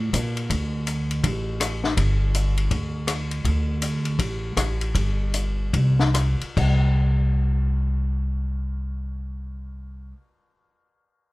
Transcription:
0.00 0.12 A2 medium
0.13 0.49 A#2 medium
0.13 kick soft
0.13 hi-hat pedal medium
0.13 ride medium
0.37 ride soft
0.50 1.20 D2 medium
0.50 kick soft
0.50 ride medium
0.87 hi-hat pedal soft
0.87 ride medium
1.11 ride soft
1.24 1.94 A1 medium
1.24 kick soft
1.24 ride medium
1.60 cross-stick medium
1.60 hi-hat pedal medium
1.60 ride medium
1.84 snare soft
1.97 2.67 G1 medium
1.97 kick soft
1.97 ride medium
2.34 hi-hat pedal medium
2.34 ride medium
2.57 ride soft
2.71 3.41 D2 medium
2.71 kick soft
2.71 ride medium
3.07 cross-stick medium
3.07 hi-hat pedal soft
3.07 ride medium
3.31 ride soft
3.45 4.15 D2 medium
3.45 kick soft
3.45 ride medium
3.82 hi-hat pedal soft
3.82 ride medium
4.05 ride soft
4.19 4.54 A1 medium
4.19 kick soft
4.19 ride medium
4.57 4.92 A1 medium
4.57 cross-stick medium
4.57 hi-hat pedal medium
4.57 ride medium
4.81 ride soft
4.95 5.70 G1 medium
4.95 kick soft
4.95 ride medium
5.34 hi-hat pedal medium
5.34 ride medium
5.73 6.37 C2 medium
5.73 kick soft
5.73 ride medium
5.99 snare soft
6.14 cross-stick medium
6.14 hi-hat pedal medium
6.14 ride medium
6.41 muted upright bass stroke soft
6.41 ride soft
6.57 10.11 C2 medium
6.57 kick medium
6.57 crash medium

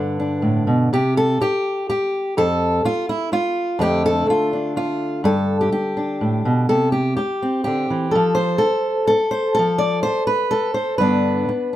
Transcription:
0.00 0.89 G2 medium
0.00 0.92 D3 medium
0.00 0.18 D4 soft
0.00 0.92 B4 medium
0.20 0.90 D4 soft
0.42 0.67 A2 medium
0.67 0.92 B2 medium
0.93 1.40 C3 medium
0.93 1.17 G4 medium
1.17 1.41 A4 medium
1.41 1.88 G4 medium
1.41 muted steel-string acoustic guitar stroke medium
1.89 2.37 G4 medium
1.89 muted steel-string acoustic guitar stroke medium
2.37 2.84 F2 medium
2.37 2.85 A4 loud
2.85 3.09 F4 medium
2.85 muted steel-string acoustic guitar stroke medium
3.09 3.32 E4 medium
3.32 3.81 F4 medium
3.32 muted steel-string acoustic guitar stroke medium
3.79 4.26 F2 medium
3.79 6.69 D3 medium
3.79 5.21 A3 soft
3.79 4.53 D4 soft
3.79 4.05 G4 loud
4.06 4.29 A4 loud
4.27 4.76 F4 medium
4.27 muted steel-string acoustic guitar stroke medium
4.53 5.22 D4 soft
4.76 5.25 F4 medium
4.76 muted steel-string acoustic guitar stroke medium
5.24 5.72 G2 medium
5.24 5.60 A4 medium
5.61 5.71 G4 medium
5.72 6.69 G4 medium
5.72 muted steel-string acoustic guitar stroke medium
5.97 6.67 D4 soft
6.21 6.45 A2 soft
6.45 6.69 B2 medium
6.69 7.18 C3 medium
6.69 6.92 A4 medium
6.92 7.15 G4 medium
7.17 7.63 G4 medium
7.17 muted steel-string acoustic guitar stroke medium
7.42 8.11 C4 soft
7.64 7.90 D3 soft
7.64 8.13 G4 medium
7.90 8.14 E3 medium
8.11 8.62 F3 medium
8.11 8.57 A4 medium
8.35 9.08 C5 medium
8.58 9.06 A4 medium
8.58 muted steel-string acoustic guitar stroke medium
9.07 9.53 A4 loud
9.07 muted steel-string acoustic guitar stroke medium
9.31 9.56 C5 medium
9.55 10.28 A4 loud
9.59 10.05 F3 medium
9.78 10.02 D5 loud
10.03 10.27 C5 loud
10.03 muted steel-string acoustic guitar stroke medium
10.27 10.74 B4 medium
10.51 11.00 A4 medium
10.51 muted steel-string acoustic guitar stroke medium
10.74 10.98 C5 medium
10.98 11.47 G2 medium
10.98 11.47 D3 soft
10.98 11.76 B3 soft
10.98 11.72 D4 medium
10.98 11.76 B4 medium
11.49 muted steel-string acoustic guitar stroke medium

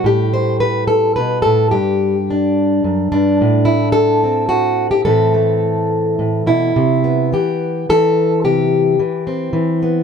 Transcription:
0.00 2.14 G3 soft
0.04 1.17 A2 medium
0.04 0.90 G4 medium
0.34 0.60 C5 medium
0.60 0.87 B4 medium
0.88 1.16 A4 medium
1.16 1.45 B2 medium
1.16 1.42 B4 medium
1.42 1.74 A2 soft
1.42 1.71 A4 medium
1.71 2.84 G2 medium
1.71 3.39 G4 medium
2.30 3.11 D4 soft
2.84 3.11 F#2 medium
3.12 3.40 G2 medium
3.12 4.22 D4 medium
3.41 5.04 A2 medium
3.65 3.92 E4 medium
3.92 4.48 A4 medium
4.24 5.07 C4 soft
4.49 4.91 F#4 medium
4.91 5.05 G4 medium
5.05 6.18 A2 medium
5.05 6.72 E3 soft
5.05 5.33 A3 soft
5.05 6.73 C4 soft
5.05 6.47 A4 medium
5.34 6.73 A3 soft
6.19 6.46 A2 medium
6.46 6.75 B2 soft
6.46 7.32 E4 medium
6.76 7.33 C3 medium
7.04 8.40 B3 soft
7.32 7.89 E3 medium
7.32 7.89 G4 medium
7.89 8.99 E3 medium
7.89 8.44 A4 medium
8.44 8.99 C3 medium
8.44 9.54 G4 medium
8.99 9.53 E3 medium
9.27 10.03 C4 soft
9.53 10.03 E3 medium
9.83 10.03 B3 soft

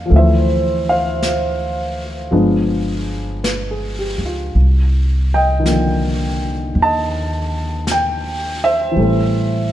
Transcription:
0.00 0.11 A#3 soft
0.00 0.12 C4 soft
0.00 0.13 D4 soft
0.00 0.11 D5 medium
0.00 0.13 F5 medium
0.06 2.29 F3 soft
0.10 2.28 D2 medium
0.10 2.32 A3 soft
0.10 2.33 C4 soft
0.10 brush sweep soft
0.16 2.35 E3 soft
0.16 0.90 C5 soft
0.16 0.84 E5 medium
0.89 2.31 C5 medium
0.89 4.17 F5 medium
1.23 brush sweep soft
1.23 snare soft
1.23 hi-hat pedal soft
2.31 4.14 G1 medium
2.31 4.55 F3 soft
2.31 4.55 G#3 soft
2.31 4.55 B3 soft
2.31 4.55 D4 medium
2.31 brush sweep soft
3.44 3.96 B4 soft
3.44 brush sweep soft
3.44 snare soft
3.44 hi-hat pedal soft
3.71 4.19 G#4 soft
3.99 4.33 G4 soft
4.18 4.52 C#2 soft
4.26 4.65 F4 soft
4.55 6.72 C2 medium
4.55 brush sweep soft
5.34 6.82 D#5 medium
5.34 6.75 G5 medium
5.60 8.94 D#3 soft
5.64 8.96 F3 soft
5.64 8.98 A#3 soft
5.64 brush sweep soft
5.64 snare soft
5.64 hi-hat pedal soft
5.71 8.99 D3 soft
6.75 8.92 D#2 medium
6.75 brush sweep soft
6.82 8.97 D#5 medium
6.82 7.93 A5 medium
7.87 brush sweep soft
7.87 snare soft
7.87 hi-hat pedal soft
7.92 8.59 G5 medium
8.64 9.72 C5 soft
8.64 9.72 E5 medium
8.91 9.72 E3 soft
8.91 9.72 G3 soft
8.96 9.72 A1 medium
8.96 9.72 A3 soft
8.96 brush sweep soft
9.03 9.72 C4 soft

